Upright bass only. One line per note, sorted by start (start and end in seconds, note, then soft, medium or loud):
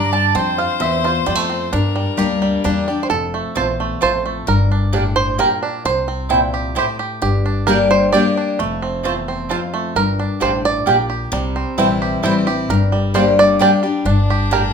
0.00 0.29 G2 medium
0.35 0.66 F2 loud
0.81 1.20 E2 medium
1.27 1.66 F2 medium
1.73 2.04 G2 loud
2.19 2.58 D2 medium
2.65 3.04 E2 medium
3.10 3.41 F1 medium
3.56 3.95 A#1 medium
4.02 4.41 A1 medium
4.48 5.39 G1 medium
5.85 6.76 C2 medium
7.22 8.14 G1 medium
8.59 9.50 F1 medium
9.96 10.26 G1 loud
10.41 10.80 A1 medium
10.87 11.25 A#1 medium
11.32 11.63 C2 loud
11.78 12.17 A#1 medium
12.23 12.62 A1 medium
12.69 13.60 G1 loud
14.05 14.73 G1 medium